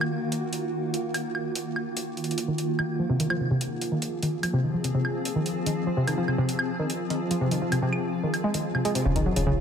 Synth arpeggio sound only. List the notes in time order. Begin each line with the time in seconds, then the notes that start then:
2.48 D#3
2.79 D#3
2.99 F3
3.10 C3
3.20 D#3
3.30 F3
3.40 C3
3.51 C3
3.92 D#3
4.23 D#3
4.43 F3
4.53 C3
4.64 D#3
4.74 F3
4.84 C3
4.95 C3
5.36 D#3
5.66 D#3
5.87 F3
5.97 C3
6.07 D#3
6.18 F3
6.28 C3
6.38 C3
6.79 D#3
7.10 D#3
7.31 F3
7.41 C3
7.51 D#3
7.62 F3
7.72 C3
7.82 C3
8.23 D#3
8.44 G#3
8.54 D#3
8.75 C3
8.85 G#3
8.95 C3
9.05 C#3
9.16 D#3
9.26 F#3
9.36 C#3
9.47 C#3